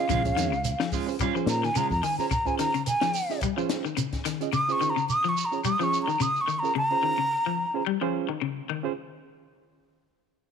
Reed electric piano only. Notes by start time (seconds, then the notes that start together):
0.25 C#4 F4 G#4 C#5
1.07 C#4 F4 G#4 C5
1.35 C#4 F4 G#4 C5
2.19 C#4 F4 G#4 C5
2.45 C#4 F4 G#4 C5
3.29 C#4 F4 G#4 D#5
3.57 C#4 F4 G#4 C5
4.41 C#4 F4 G#4 D#5
4.68 C#4 F4 G#4 C5
5.52 C#4 F4 G#4 C#5
5.81 C#4 F4 G#4 C#5
6.63 C#4 F4 G#4 A#4
6.91 C#4 F4 G#4 C5
7.74 C#4 F4 G#4 C5
8.01 C#4 F4 G#4 C5
8.83 C#4 F4 G#4 C5